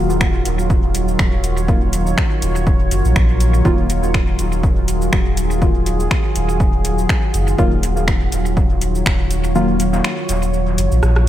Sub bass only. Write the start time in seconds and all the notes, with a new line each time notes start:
Already playing: D#1
0.46 D#1
1.19 D#1
2.42 D#1
2.91 F#1
3.05 A#1
3.16 A#1
3.65 D#1
4.39 D#1
5.13 D#1
6.36 D#1
7.34 F#1
7.59 D#1
8.32 D#1
9.06 D#1
10.29 D#1
10.78 F#1
10.92 A#1
11.03 A#1